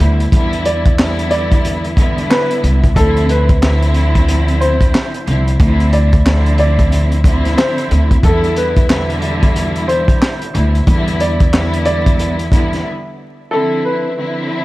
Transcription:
0.00 0.27 D2 loud
0.00 0.30 B2 medium
0.00 0.29 D3 medium
0.00 0.30 G3 medium
0.00 0.31 E4 medium
0.00 0.28 C5 medium
0.00 closed hi-hat medium
0.20 closed hi-hat soft
0.31 2.26 E2 loud
0.31 0.94 D3 loud
0.31 0.94 G3 medium
0.31 0.94 B3 medium
0.31 0.95 E4 loud
0.31 kick loud
0.31 closed hi-hat medium
0.53 closed hi-hat medium
0.65 1.27 D5 medium
0.65 closed hi-hat medium
0.85 kick medium
0.85 closed hi-hat medium
0.98 1.91 D3 loud
0.98 1.91 G3 loud
0.98 1.92 B3 loud
0.98 1.92 E4 loud
0.98 snare loud
0.98 clap medium
1.19 closed hi-hat medium
1.31 1.81 D5 medium
1.31 closed hi-hat medium
1.52 kick medium
1.52 closed hi-hat medium
1.65 closed hi-hat medium
1.84 closed hi-hat soft
1.95 2.89 D3 loud
1.95 2.89 G3 medium
1.95 2.90 B3 loud
1.95 2.90 E4 loud
1.95 kick loud
1.95 closed hi-hat medium
2.18 closed hi-hat soft
2.30 2.60 B4 medium
2.30 snare loud
2.30 clap medium
2.51 closed hi-hat medium
2.64 2.91 C2 medium
2.64 closed hi-hat medium
2.84 kick medium
2.84 closed hi-hat soft
2.95 4.90 D2 loud
2.95 3.57 D3 loud
2.95 3.58 F3 medium
2.95 3.58 C4 medium
2.95 3.58 E4 loud
2.95 3.26 A4 loud
2.95 kick loud
2.95 closed hi-hat medium
3.17 closed hi-hat medium
3.29 3.80 B4 medium
3.29 closed hi-hat medium
3.49 kick loud
3.49 closed hi-hat medium
3.61 5.16 D3 loud
3.61 5.17 F3 loud
3.61 5.17 C4 loud
3.61 5.17 E4 loud
3.61 snare loud
3.61 clap medium
3.82 closed hi-hat medium
3.94 closed hi-hat medium
4.15 kick medium
4.15 closed hi-hat medium
4.28 closed hi-hat medium
4.48 closed hi-hat soft
4.61 5.56 C5 medium
4.61 closed hi-hat medium
4.81 kick medium
4.81 closed hi-hat medium
4.95 snare loud
4.95 clap medium
5.14 closed hi-hat medium
5.27 5.54 C2 loud
5.27 5.56 D3 medium
5.27 5.57 F3 medium
5.27 5.58 C4 medium
5.27 5.59 E4 medium
5.27 closed hi-hat medium
5.48 closed hi-hat soft
5.58 7.54 D2 loud
5.58 6.21 D3 loud
5.58 6.21 F3 medium
5.58 6.21 C4 medium
5.58 6.22 E4 loud
5.58 kick loud
5.58 closed hi-hat medium
5.80 closed hi-hat medium
5.93 6.55 D5 medium
5.93 closed hi-hat medium
6.13 kick loud
6.13 closed hi-hat medium
6.24 7.18 D3 loud
6.24 7.18 F3 medium
6.24 7.18 C4 medium
6.24 7.19 E4 loud
6.24 snare loud
6.24 clap medium
6.46 closed hi-hat medium
6.58 7.09 D5 medium
6.58 closed hi-hat medium
6.79 kick medium
6.79 closed hi-hat medium
6.92 closed hi-hat medium
7.12 closed hi-hat soft
7.24 8.17 D3 loud
7.24 8.17 F3 loud
7.24 8.18 C4 loud
7.24 8.18 E4 loud
7.24 kick loud
7.24 closed hi-hat medium
7.45 snare soft
7.45 closed hi-hat medium
7.57 7.87 C5 medium
7.57 snare loud
7.57 clap medium
7.78 closed hi-hat medium
7.91 8.18 D2 medium
7.91 closed hi-hat medium
8.11 kick medium
8.11 closed hi-hat soft
8.23 10.17 E2 loud
8.23 8.85 D3 loud
8.23 8.85 G3 medium
8.23 8.86 B3 medium
8.23 8.86 E4 loud
8.23 8.54 A4 medium
8.23 kick loud
8.23 closed hi-hat medium
8.44 closed hi-hat medium
8.56 9.07 B4 medium
8.56 closed hi-hat medium
8.76 kick loud
8.76 closed hi-hat medium
8.88 10.44 B2 loud
8.88 10.43 D3 loud
8.88 10.44 G3 loud
8.88 10.45 E4 loud
8.88 snare loud
8.88 clap medium
9.10 closed hi-hat medium
9.22 closed hi-hat medium
9.43 kick medium
9.43 closed hi-hat medium
9.56 closed hi-hat loud
9.76 closed hi-hat medium
9.88 10.83 C5 medium
9.88 closed hi-hat medium
10.08 kick medium
10.08 closed hi-hat medium
10.22 snare loud
10.22 clap medium
10.42 closed hi-hat medium
10.53 10.82 D2 loud
10.53 10.85 B2 medium
10.53 10.84 D3 medium
10.53 10.85 G3 medium
10.53 10.86 E4 medium
10.53 closed hi-hat medium
10.75 closed hi-hat soft
10.86 12.81 E2 loud
10.86 11.48 D3 loud
10.86 11.49 G3 medium
10.86 11.49 B3 medium
10.86 11.50 E4 loud
10.86 kick loud
10.86 closed hi-hat medium
11.08 closed hi-hat medium
11.20 11.82 D5 medium
11.20 closed hi-hat medium
11.40 kick medium
11.40 closed hi-hat medium
11.53 12.46 D3 loud
11.53 12.46 G3 loud
11.53 12.46 B3 loud
11.53 12.47 E4 loud
11.53 snare loud
11.53 clap medium
11.73 closed hi-hat medium
11.85 12.36 D5 medium
11.85 closed hi-hat medium
12.06 kick medium
12.06 closed hi-hat medium
12.19 closed hi-hat medium
12.39 closed hi-hat soft
12.50 12.84 D3 medium
12.50 12.84 G3 medium
12.50 12.85 B3 medium
12.50 12.85 E4 loud
12.50 kick loud
12.50 closed hi-hat medium
12.73 snare soft
12.73 closed hi-hat medium
13.50 14.12 D3 loud
13.50 14.13 F3 medium
13.50 14.13 C4 medium
13.50 14.14 E4 loud
13.50 13.81 A4 loud
13.85 14.34 B4 medium
14.16 14.65 D3 loud
14.16 14.65 F3 medium
14.16 14.65 C4 medium
14.16 14.65 E4 loud

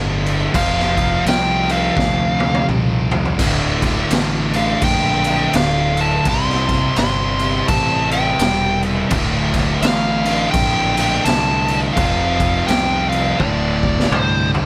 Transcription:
0.00 0.47 G1 medium
0.00 0.52 D2 loud
0.00 0.53 D2 medium
0.00 0.53 A2 loud
0.00 0.54 A2 medium
0.00 0.54 D3 loud
0.00 0.55 D3 loud
0.26 crash soft
0.53 1.18 F1 loud
0.53 1.66 F2 medium
0.53 1.66 C3 medium
0.53 1.67 F3 loud
0.53 1.23 F5 loud
0.53 kick loud
0.53 crash medium
0.79 snare soft
0.97 kick medium
0.97 crash medium
1.26 1.90 C2 loud
1.26 1.71 G5 loud
1.26 snare loud
1.26 crash medium
1.67 2.66 F2 medium
1.67 2.67 C3 medium
1.67 2.66 F3 medium
1.67 crash medium
1.72 2.66 F5 medium
1.97 2.61 D2 medium
1.97 kick loud
1.97 snare medium
2.40 high tom medium
2.54 high tom medium
2.67 3.40 C2 medium
2.67 3.37 F2 medium
2.67 3.39 C3 medium
2.67 3.39 F3 medium
2.67 mid tom medium
3.11 floor tom loud
3.25 floor tom medium
3.38 4.03 D1 loud
3.38 4.51 D2 medium
3.38 4.52 A2 loud
3.38 4.51 D3 loud
3.38 kick loud
3.38 splash medium
3.38 crash loud
3.82 kick medium
3.82 snare soft
3.82 crash medium
4.11 4.75 A1 medium
4.11 snare loud
4.11 crash medium
4.52 5.53 D2 medium
4.52 5.52 A2 medium
4.52 5.51 D3 medium
4.52 4.84 F5 medium
4.52 crash medium
4.82 5.46 A#1 medium
4.82 5.56 G5 medium
4.82 kick loud
4.82 crash medium
5.24 crash medium
5.53 6.18 D1 loud
5.53 6.24 D2 medium
5.53 6.24 A2 medium
5.53 6.25 D3 loud
5.53 5.99 F5 loud
5.53 snare loud
5.53 crash medium
5.97 6.28 A5 loud
5.97 crash medium
6.25 6.89 C2 loud
6.25 7.37 C3 medium
6.25 7.38 G3 medium
6.25 kick loud
6.25 crash medium
6.29 7.38 C4 loud
6.29 6.97 C6 loud
6.50 snare soft
6.69 kick medium
6.69 snare soft
6.69 crash medium
6.96 7.61 G1 medium
6.96 7.68 C6 loud
6.96 snare loud
6.96 crash medium
7.39 8.39 C3 medium
7.39 8.39 G3 medium
7.39 8.38 C4 loud
7.39 crash medium
7.68 8.32 A1 medium
7.68 8.08 A5 loud
7.68 kick loud
7.68 crash medium
8.11 8.79 G5 medium
8.11 crash medium
8.39 9.03 E1 medium
8.39 9.09 C3 medium
8.39 9.10 G3 medium
8.39 snare loud
8.39 crash medium
8.43 9.11 C4 loud
8.83 crash medium
9.11 9.75 D1 loud
9.11 10.23 D2 medium
9.11 10.24 A2 medium
9.11 10.24 D3 medium
9.11 kick loud
9.11 crash medium
9.54 kick medium
9.54 snare soft
9.54 crash medium
9.82 10.46 A1 loud
9.82 10.51 F5 medium
9.82 snare loud
9.82 crash medium
10.25 11.24 D2 medium
10.25 11.25 A2 medium
10.25 11.23 D3 medium
10.25 crash medium
10.51 11.18 A#1 loud
10.51 11.26 G5 loud
10.51 kick loud
10.51 crash medium
10.97 crash medium
11.25 11.89 C2 medium
11.25 11.95 D2 medium
11.25 11.96 A2 loud
11.25 11.97 D3 medium
11.25 11.78 A5 loud
11.25 snare loud
11.25 crash medium
11.68 crash medium
11.93 12.61 F1 loud
11.93 13.09 F2 medium
11.93 12.67 F5 loud
11.93 kick loud
11.93 crash medium
11.99 13.10 C3 loud
11.99 13.10 F3 loud
12.40 kick medium
12.40 crash medium
12.67 13.32 C2 medium
12.67 13.08 G5 loud
12.67 snare loud
12.67 crash medium
13.09 13.38 C3 medium
13.09 13.38 F3 loud
13.09 13.39 F5 medium
13.09 crash medium
13.14 13.37 F2 medium
13.38 14.04 D1 medium
13.38 14.51 D2 loud
13.38 14.52 A2 loud
13.38 14.50 D3 loud
13.38 14.15 D5 medium
13.38 kick loud
13.83 kick medium
14.00 snare medium
14.11 14.66 C2 loud
14.11 mid tom loud
14.15 14.50 C5 medium
14.51 14.66 D2 medium
14.51 14.66 A2 medium
14.51 14.66 D3 medium
14.51 floor tom loud

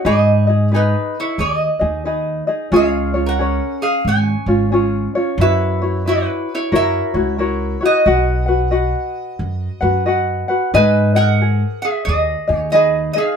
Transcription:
0.05 0.92 G#2 loud
0.05 0.47 D#4 medium
0.05 0.47 G#4 medium
0.05 0.68 G#4 medium
0.05 0.47 B4 medium
0.05 0.46 D#5 medium
0.05 0.75 D#5 medium
0.47 0.71 D#4 soft
0.47 0.72 G#4 soft
0.47 0.72 D#5 soft
0.72 1.81 D#4 medium
0.72 1.15 D#4 medium
0.72 1.81 G#4 medium
0.72 1.80 B4 medium
0.72 1.78 D#5 medium
0.76 1.20 B4 medium
1.20 1.39 E4 medium
1.20 1.41 C#5 medium
1.38 1.66 D#2 medium
1.38 2.68 G#4 medium
1.38 2.76 D#5 medium
1.79 2.40 D#2 medium
1.79 2.04 D#4 soft
1.79 2.05 G#4 soft
1.79 2.05 D#5 soft
2.05 2.47 D#4 medium
2.05 2.47 G#4 medium
2.05 2.47 B4 medium
2.05 2.46 D#5 medium
2.47 2.72 D#4 soft
2.47 2.71 G#4 medium
2.47 2.72 D#5 medium
2.72 3.58 C#2 loud
2.72 3.14 C#4 medium
2.72 3.14 F4 medium
2.72 3.14 G#4 medium
2.72 3.23 G#4 medium
2.72 3.13 C#5 medium
2.76 3.30 F5 medium
3.14 3.39 C#4 soft
3.14 3.38 F4 soft
3.14 3.39 C#5 medium
3.26 3.77 A#4 medium
3.26 3.83 F#5 medium
3.39 4.49 C#4 medium
3.39 4.47 G#4 medium
3.39 4.47 C#5 medium
3.82 4.04 G#4 medium
3.82 4.07 F5 medium
4.05 4.32 G#1 medium
4.05 4.69 C#5 medium
4.05 4.70 G#5 medium
4.46 5.06 G#1 medium
4.46 4.71 C#4 soft
4.46 4.72 F4 soft
4.46 4.71 C#5 soft
4.72 5.14 C#4 medium
4.72 5.15 F4 medium
4.72 5.14 G#4 medium
4.72 5.14 C#5 medium
5.15 5.40 C#4 soft
5.15 5.40 F4 soft
5.15 5.39 C#5 medium
5.38 6.25 F#2 loud
5.38 5.82 E4 medium
5.38 5.82 F#4 medium
5.38 5.81 B4 medium
5.38 6.03 B4 medium
5.38 6.09 E5 medium
5.42 5.80 C#5 medium
5.82 6.06 E4 soft
5.82 6.07 F#4 soft
5.82 6.05 C#5 medium
6.06 6.48 E4 medium
6.06 6.72 E4 medium
6.06 6.72 F#4 medium
6.06 6.71 B4 medium
6.06 6.53 B4 medium
6.06 6.72 C#5 medium
6.55 6.73 E4 medium
6.55 6.75 C#5 medium
6.72 6.99 F#2 medium
6.72 7.14 E4 medium
6.72 7.14 F#4 medium
6.72 7.13 A#4 medium
6.72 7.79 A#4 medium
6.72 7.13 C#5 medium
6.76 7.85 E5 loud
7.14 7.74 C#2 medium
7.14 7.38 E4 soft
7.14 7.38 F#4 soft
7.14 7.38 C#5 medium
7.38 7.81 E4 medium
7.38 7.81 F#4 medium
7.38 7.80 A#4 medium
7.38 7.79 C#5 medium
7.81 8.06 E4 soft
7.81 8.05 F#4 soft
7.81 8.06 C#5 medium
7.85 10.04 F#4 medium
7.85 10.04 D#5 medium
8.06 8.93 B1 loud
8.06 8.47 F#4 medium
8.06 8.47 B4 medium
8.06 8.48 D#5 medium
8.06 8.45 F#5 medium
8.46 8.70 F#4 soft
8.46 8.71 B4 soft
8.46 8.72 F#5 medium
8.71 9.81 F#4 medium
8.71 9.82 B4 medium
8.71 10.05 D#5 medium
8.71 9.79 F#5 medium
9.39 9.67 F#2 medium
9.81 10.41 F#2 medium
9.81 10.05 F#4 soft
9.81 10.06 B4 medium
9.81 10.06 F#5 medium
10.06 10.48 F#4 medium
10.06 10.48 B4 medium
10.06 10.48 D#5 medium
10.06 10.47 F#5 medium
10.48 10.73 F#4 soft
10.48 10.73 B4 medium
10.48 10.73 F#5 medium
10.74 11.60 G#2 loud
10.74 11.15 D#4 medium
10.74 11.14 G#4 medium
10.74 11.16 B4 medium
10.74 11.14 B4 medium
10.74 11.13 D#5 medium
10.74 11.16 G#5 loud
11.15 11.41 D#4 soft
11.15 11.40 G#4 soft
11.15 11.79 A#4 medium
11.15 11.40 D#5 medium
11.15 11.78 F#5 medium
11.41 12.49 G#4 medium
11.82 12.06 G#4 medium
11.82 12.04 E5 medium
12.05 12.34 D#2 medium
12.05 12.71 G#4 medium
12.05 12.58 D#5 medium
12.48 13.08 D#2 medium
12.48 12.72 D#4 soft
12.48 12.72 G#4 soft
12.48 12.73 D#5 medium
12.58 12.71 C#5 medium
12.72 13.16 D#4 medium
12.72 13.15 G#4 medium
12.72 13.14 G#4 medium
12.72 13.15 B4 medium
12.72 13.13 D#5 medium
13.13 13.37 D#4 soft
13.13 13.37 G#4 soft
13.13 13.37 D#5 medium
13.13 13.37 F5 medium
13.18 13.37 G#4 medium

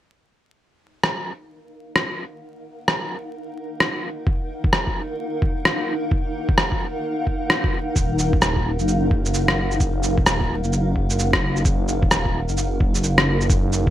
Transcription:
0.57 13.90 D#4 medium
0.78 13.90 A#4 medium
0.78 13.90 F5 medium
1.04 cross-stick medium
1.73 13.90 F#5 medium
1.96 cross-stick medium
2.88 cross-stick medium
3.80 cross-stick loud
4.27 kick loud
4.64 kick loud
4.73 cross-stick loud
4.87 kick medium
5.42 kick loud
5.65 cross-stick loud
6.11 kick loud
6.49 kick loud
6.58 cross-stick medium
6.72 kick medium
7.27 kick medium
7.50 cross-stick loud
7.64 kick loud
7.96 8.78 D#1 loud
7.96 kick loud
7.96 shaker medium
8.19 shaker medium
8.33 kick loud
8.42 cross-stick loud
8.42 shaker medium
8.56 kick medium
8.79 10.19 F#1 medium
8.79 shaker soft
8.88 shaker medium
9.11 kick medium
9.25 shaker medium
9.34 shaker medium
9.48 cross-stick medium
9.71 shaker soft
9.80 kick loud
9.80 shaker medium
10.03 shaker medium
10.18 10.62 D#1 medium
10.18 kick loud
10.26 cross-stick loud
10.26 shaker medium
10.41 kick medium
10.64 12.04 F#1 medium
10.64 shaker soft
10.73 shaker medium
10.96 kick medium
11.10 shaker medium
11.19 shaker medium
11.33 kick loud
11.33 cross-stick loud
11.56 shaker soft
11.65 kick loud
11.65 shaker medium
11.88 shaker medium
12.03 12.47 D#1 medium
12.03 kick loud
12.11 cross-stick loud
12.11 shaker medium
12.26 kick medium
12.49 13.89 F#1 medium
12.49 shaker soft
12.57 shaker medium
12.80 kick loud
12.95 shaker medium
13.04 shaker medium
13.18 cross-stick loud
13.41 shaker soft
13.50 kick loud
13.50 shaker medium
13.73 shaker medium
13.87 13.90 D#1 medium
13.87 kick loud

